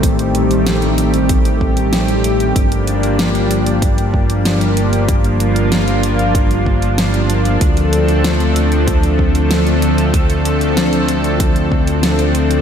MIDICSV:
0, 0, Header, 1, 4, 480
1, 0, Start_track
1, 0, Key_signature, -2, "minor"
1, 0, Tempo, 631579
1, 24, Time_signature, 4, 2, 24, 8
1, 9587, End_track
2, 0, Start_track
2, 0, Title_t, "Analog synth pad"
2, 0, Program_c, 0, 89
2, 0, Note_on_c, 0, 51, 79
2, 0, Note_on_c, 0, 55, 72
2, 0, Note_on_c, 0, 57, 72
2, 0, Note_on_c, 0, 60, 73
2, 0, Note_on_c, 0, 67, 89
2, 1914, Note_off_c, 0, 51, 0
2, 1914, Note_off_c, 0, 57, 0
2, 1914, Note_off_c, 0, 60, 0
2, 1944, Note_on_c, 0, 58, 71
2, 1945, Note_on_c, 0, 53, 81
2, 1945, Note_on_c, 0, 62, 71
2, 3834, Note_off_c, 0, 67, 0
2, 3863, Note_on_c, 0, 65, 90
2, 5754, Note_off_c, 0, 55, 0
2, 5754, Note_off_c, 0, 58, 0
2, 5765, Note_off_c, 0, 65, 0
2, 5785, Note_on_c, 0, 60, 72
2, 5785, Note_on_c, 0, 69, 87
2, 5786, Note_on_c, 0, 57, 73
2, 9587, Note_off_c, 0, 53, 0
2, 9587, Note_off_c, 0, 57, 0
2, 9587, Note_off_c, 0, 60, 0
2, 9587, Note_off_c, 0, 62, 0
2, 9587, Note_off_c, 0, 69, 0
2, 9587, End_track
3, 0, Start_track
3, 0, Title_t, "Analog synth bass"
3, 0, Program_c, 1, 38
3, 0, Note_on_c, 1, 33, 87
3, 1921, Note_off_c, 1, 33, 0
3, 1944, Note_on_c, 1, 31, 87
3, 5760, Note_off_c, 1, 31, 0
3, 5785, Note_on_c, 1, 38, 86
3, 9587, Note_off_c, 1, 38, 0
3, 9587, End_track
4, 0, Start_track
4, 0, Title_t, "Drums"
4, 24, Note_on_c, 9, 36, 113
4, 26, Note_on_c, 9, 42, 90
4, 100, Note_off_c, 9, 36, 0
4, 102, Note_off_c, 9, 42, 0
4, 145, Note_on_c, 9, 42, 40
4, 221, Note_off_c, 9, 42, 0
4, 265, Note_on_c, 9, 42, 65
4, 341, Note_off_c, 9, 42, 0
4, 386, Note_on_c, 9, 42, 38
4, 462, Note_off_c, 9, 42, 0
4, 506, Note_on_c, 9, 38, 120
4, 506, Note_on_c, 9, 42, 95
4, 582, Note_off_c, 9, 38, 0
4, 582, Note_off_c, 9, 42, 0
4, 624, Note_on_c, 9, 42, 38
4, 700, Note_off_c, 9, 42, 0
4, 745, Note_on_c, 9, 42, 66
4, 821, Note_off_c, 9, 42, 0
4, 864, Note_on_c, 9, 42, 39
4, 940, Note_off_c, 9, 42, 0
4, 983, Note_on_c, 9, 42, 94
4, 984, Note_on_c, 9, 36, 121
4, 1059, Note_off_c, 9, 42, 0
4, 1060, Note_off_c, 9, 36, 0
4, 1104, Note_on_c, 9, 42, 39
4, 1180, Note_off_c, 9, 42, 0
4, 1224, Note_on_c, 9, 36, 61
4, 1300, Note_off_c, 9, 36, 0
4, 1344, Note_on_c, 9, 42, 39
4, 1420, Note_off_c, 9, 42, 0
4, 1465, Note_on_c, 9, 38, 117
4, 1465, Note_on_c, 9, 42, 92
4, 1541, Note_off_c, 9, 38, 0
4, 1541, Note_off_c, 9, 42, 0
4, 1584, Note_on_c, 9, 42, 39
4, 1660, Note_off_c, 9, 42, 0
4, 1705, Note_on_c, 9, 42, 68
4, 1781, Note_off_c, 9, 42, 0
4, 1826, Note_on_c, 9, 42, 38
4, 1902, Note_off_c, 9, 42, 0
4, 1944, Note_on_c, 9, 36, 117
4, 1945, Note_on_c, 9, 42, 91
4, 2020, Note_off_c, 9, 36, 0
4, 2021, Note_off_c, 9, 42, 0
4, 2066, Note_on_c, 9, 42, 39
4, 2142, Note_off_c, 9, 42, 0
4, 2185, Note_on_c, 9, 42, 64
4, 2261, Note_off_c, 9, 42, 0
4, 2305, Note_on_c, 9, 42, 39
4, 2381, Note_off_c, 9, 42, 0
4, 2425, Note_on_c, 9, 38, 120
4, 2425, Note_on_c, 9, 42, 93
4, 2501, Note_off_c, 9, 38, 0
4, 2501, Note_off_c, 9, 42, 0
4, 2546, Note_on_c, 9, 42, 38
4, 2622, Note_off_c, 9, 42, 0
4, 2665, Note_on_c, 9, 42, 66
4, 2741, Note_off_c, 9, 42, 0
4, 2785, Note_on_c, 9, 42, 39
4, 2861, Note_off_c, 9, 42, 0
4, 2904, Note_on_c, 9, 36, 122
4, 2905, Note_on_c, 9, 42, 93
4, 2980, Note_off_c, 9, 36, 0
4, 2981, Note_off_c, 9, 42, 0
4, 3025, Note_on_c, 9, 42, 40
4, 3101, Note_off_c, 9, 42, 0
4, 3144, Note_on_c, 9, 36, 62
4, 3220, Note_off_c, 9, 36, 0
4, 3266, Note_on_c, 9, 42, 38
4, 3342, Note_off_c, 9, 42, 0
4, 3385, Note_on_c, 9, 38, 121
4, 3385, Note_on_c, 9, 42, 90
4, 3461, Note_off_c, 9, 38, 0
4, 3461, Note_off_c, 9, 42, 0
4, 3505, Note_on_c, 9, 42, 39
4, 3581, Note_off_c, 9, 42, 0
4, 3625, Note_on_c, 9, 42, 64
4, 3701, Note_off_c, 9, 42, 0
4, 3746, Note_on_c, 9, 42, 38
4, 3822, Note_off_c, 9, 42, 0
4, 3865, Note_on_c, 9, 36, 119
4, 3865, Note_on_c, 9, 42, 89
4, 3941, Note_off_c, 9, 36, 0
4, 3941, Note_off_c, 9, 42, 0
4, 3986, Note_on_c, 9, 42, 38
4, 4062, Note_off_c, 9, 42, 0
4, 4106, Note_on_c, 9, 42, 61
4, 4182, Note_off_c, 9, 42, 0
4, 4226, Note_on_c, 9, 42, 37
4, 4302, Note_off_c, 9, 42, 0
4, 4346, Note_on_c, 9, 38, 121
4, 4346, Note_on_c, 9, 42, 90
4, 4422, Note_off_c, 9, 38, 0
4, 4422, Note_off_c, 9, 42, 0
4, 4466, Note_on_c, 9, 42, 37
4, 4542, Note_off_c, 9, 42, 0
4, 4586, Note_on_c, 9, 42, 62
4, 4662, Note_off_c, 9, 42, 0
4, 4706, Note_on_c, 9, 42, 36
4, 4782, Note_off_c, 9, 42, 0
4, 4824, Note_on_c, 9, 36, 121
4, 4827, Note_on_c, 9, 42, 89
4, 4900, Note_off_c, 9, 36, 0
4, 4903, Note_off_c, 9, 42, 0
4, 4946, Note_on_c, 9, 42, 38
4, 5022, Note_off_c, 9, 42, 0
4, 5065, Note_on_c, 9, 36, 61
4, 5141, Note_off_c, 9, 36, 0
4, 5186, Note_on_c, 9, 42, 36
4, 5262, Note_off_c, 9, 42, 0
4, 5306, Note_on_c, 9, 38, 120
4, 5306, Note_on_c, 9, 42, 90
4, 5382, Note_off_c, 9, 38, 0
4, 5382, Note_off_c, 9, 42, 0
4, 5426, Note_on_c, 9, 42, 37
4, 5502, Note_off_c, 9, 42, 0
4, 5545, Note_on_c, 9, 42, 64
4, 5621, Note_off_c, 9, 42, 0
4, 5665, Note_on_c, 9, 42, 37
4, 5741, Note_off_c, 9, 42, 0
4, 5784, Note_on_c, 9, 42, 84
4, 5785, Note_on_c, 9, 36, 114
4, 5860, Note_off_c, 9, 42, 0
4, 5861, Note_off_c, 9, 36, 0
4, 5905, Note_on_c, 9, 42, 36
4, 5981, Note_off_c, 9, 42, 0
4, 6025, Note_on_c, 9, 42, 61
4, 6101, Note_off_c, 9, 42, 0
4, 6145, Note_on_c, 9, 42, 36
4, 6221, Note_off_c, 9, 42, 0
4, 6266, Note_on_c, 9, 38, 114
4, 6266, Note_on_c, 9, 42, 86
4, 6342, Note_off_c, 9, 38, 0
4, 6342, Note_off_c, 9, 42, 0
4, 6387, Note_on_c, 9, 42, 35
4, 6463, Note_off_c, 9, 42, 0
4, 6506, Note_on_c, 9, 42, 61
4, 6582, Note_off_c, 9, 42, 0
4, 6626, Note_on_c, 9, 42, 36
4, 6702, Note_off_c, 9, 42, 0
4, 6745, Note_on_c, 9, 36, 117
4, 6746, Note_on_c, 9, 42, 86
4, 6821, Note_off_c, 9, 36, 0
4, 6822, Note_off_c, 9, 42, 0
4, 6866, Note_on_c, 9, 42, 37
4, 6942, Note_off_c, 9, 42, 0
4, 6985, Note_on_c, 9, 36, 58
4, 7061, Note_off_c, 9, 36, 0
4, 7106, Note_on_c, 9, 42, 35
4, 7182, Note_off_c, 9, 42, 0
4, 7225, Note_on_c, 9, 38, 116
4, 7225, Note_on_c, 9, 42, 86
4, 7301, Note_off_c, 9, 38, 0
4, 7301, Note_off_c, 9, 42, 0
4, 7347, Note_on_c, 9, 42, 36
4, 7423, Note_off_c, 9, 42, 0
4, 7465, Note_on_c, 9, 42, 61
4, 7541, Note_off_c, 9, 42, 0
4, 7586, Note_on_c, 9, 42, 36
4, 7662, Note_off_c, 9, 42, 0
4, 7704, Note_on_c, 9, 36, 109
4, 7706, Note_on_c, 9, 42, 84
4, 7780, Note_off_c, 9, 36, 0
4, 7782, Note_off_c, 9, 42, 0
4, 7825, Note_on_c, 9, 42, 38
4, 7901, Note_off_c, 9, 42, 0
4, 7945, Note_on_c, 9, 42, 63
4, 8021, Note_off_c, 9, 42, 0
4, 8065, Note_on_c, 9, 42, 36
4, 8141, Note_off_c, 9, 42, 0
4, 8185, Note_on_c, 9, 38, 114
4, 8185, Note_on_c, 9, 42, 85
4, 8261, Note_off_c, 9, 38, 0
4, 8261, Note_off_c, 9, 42, 0
4, 8305, Note_on_c, 9, 42, 36
4, 8381, Note_off_c, 9, 42, 0
4, 8425, Note_on_c, 9, 42, 60
4, 8501, Note_off_c, 9, 42, 0
4, 8545, Note_on_c, 9, 42, 36
4, 8621, Note_off_c, 9, 42, 0
4, 8664, Note_on_c, 9, 36, 113
4, 8664, Note_on_c, 9, 42, 85
4, 8740, Note_off_c, 9, 36, 0
4, 8740, Note_off_c, 9, 42, 0
4, 8785, Note_on_c, 9, 42, 36
4, 8861, Note_off_c, 9, 42, 0
4, 8904, Note_on_c, 9, 36, 57
4, 8980, Note_off_c, 9, 36, 0
4, 9025, Note_on_c, 9, 42, 35
4, 9101, Note_off_c, 9, 42, 0
4, 9143, Note_on_c, 9, 38, 112
4, 9143, Note_on_c, 9, 42, 86
4, 9219, Note_off_c, 9, 38, 0
4, 9219, Note_off_c, 9, 42, 0
4, 9264, Note_on_c, 9, 42, 38
4, 9340, Note_off_c, 9, 42, 0
4, 9384, Note_on_c, 9, 42, 61
4, 9460, Note_off_c, 9, 42, 0
4, 9505, Note_on_c, 9, 42, 35
4, 9581, Note_off_c, 9, 42, 0
4, 9587, End_track
0, 0, End_of_file